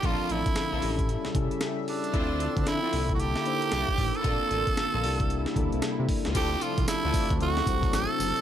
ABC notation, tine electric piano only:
X:1
M:4/4
L:1/8
Q:"Swing 16ths" 1/4=114
K:Dm
V:1 name="Tine electric piano"
[F,CDA]3 [^CEGA]2 [CEGA]2 z | [CEFA]3 [B,DEA]2 [B,D_E=Ec]2 z | [CDFA]3 [B,DEG]2 [B,DEA]2 z | [CEFA]3 z [CE^FA] [CEFc]2 z |]